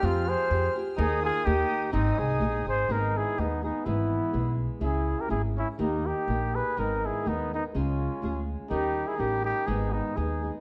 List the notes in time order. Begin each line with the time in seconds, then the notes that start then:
Already playing: G5 F6
0.02 F2 F3 G#3 C4 F4 G4 G#4
0.26 G#4 C5
0.50 F2 C4 F4 G4 G#4
0.75 F4 G4 G#4
0.97 D#2 D#3 A#3 D#4 G#4 A#4 G#5 D#6
1.23 F4 G#4
1.44 D#2 A#3 D#4 G4 A#4 G5
1.92 G#1 G#2 D#3 G#3 C4 D#4 G#4 C5 G#5 D#6
2.17 C2 D#4 G#4
2.40 A#1 G#3 C4 D#4 G#4
2.67 G#1 G#4 C5
2.89 G#1 G#2 D#3 G#3 B3 D#4 G#4 A#4
3.17 E4 G#4
3.38 D#2 G#3 B3 D#4 G#4
3.64 G#3 B3 D#4 G#4
3.85 G#1 G#2 E3 G#3 B3 E4 G#4
4.33 B1 G#3 B3 E4 G#4
4.81 C#2 C#3 G#3 C#4 E4 G#4
5.19 G4 A#4
5.28 G#1 G#3 C#4 E4 G#4
5.57 C#4 E4
5.79 D#2 D#3 A#3 D#4 G4 A#4
6.06 D#4 G4
6.28 A#1 A#3 D#4 G4 A#4
6.55 G#4 B4
6.76 G#1 G#2 D#3 G#3 B3 D#4 A#4
7.05 E4 G#4
7.25 D#2 G#3 B3 D#4 A#4
7.53 G#3 B3 D#4 A#4
7.74 C#2 C#3 G#3 C#4 F4 G#4
8.22 D2 G#3 C#4 F4 G#4
8.70 D#2 D#3 G3 C#4 D#4 G4 A#4
9.06 E4 G#4
9.16 A1 G3 C#4 D#4 G4
9.20 A#4
9.43 D#4 G4
9.65 G#1 G#2 D#3 G#3 B3 D#4 G#4
9.90 B3 D#4
10.14 D#2 G#3 B3 D#4 G#4
10.42 G#3 B3 D#4 G#4